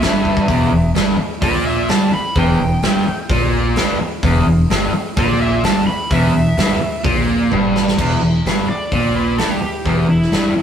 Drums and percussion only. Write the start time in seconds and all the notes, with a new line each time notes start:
0.02 snare, open hi-hat
0.25 kick
0.37 kick
0.48 kick, open hi-hat
0.95 snare, open hi-hat
1.42 kick, open hi-hat
1.89 snare, open hi-hat
2.36 kick, open hi-hat
2.82 snare, open hi-hat
3.30 kick, open hi-hat
3.76 snare, open hi-hat
4.23 kick, open hi-hat
4.70 snare, open hi-hat
5.17 kick, open hi-hat
5.64 snare, open hi-hat
6.11 kick, open hi-hat
6.58 snare, open hi-hat
7.04 kick, open hi-hat
7.52 high tom
7.76 snare
7.88 snare
7.98 kick, crash
8.46 snare, open hi-hat
8.92 kick, open hi-hat
9.38 snare, open hi-hat
9.86 kick, open hi-hat
10.22 snare
10.32 snare, open hi-hat